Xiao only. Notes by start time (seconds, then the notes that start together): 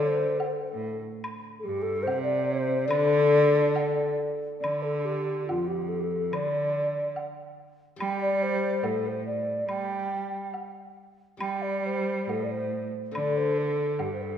Already playing: C5
0.39 A4
0.47 C5
0.53 A4
0.61 C5
0.70 A4
1.59 A4
1.64 G4
1.82 A4
2.03 C5
2.23 D5
2.44 C5
2.85 D5
4.60 D5
4.83 A4
5.00 A4
5.05 G4
5.48 F4
5.67 G4
5.89 A4
5.99 G4 A4
6.34 D5
8.01 G5
8.21 D5
8.43 C5
8.84 A4
9.07 C5
9.26 D5
9.70 G5
11.41 G5
11.62 D5
11.86 C5
12.30 A4
12.43 D5
12.51 C5
13.16 D5
13.37 C5
13.58 A4
14.00 G4
14.13 C5
14.22 A4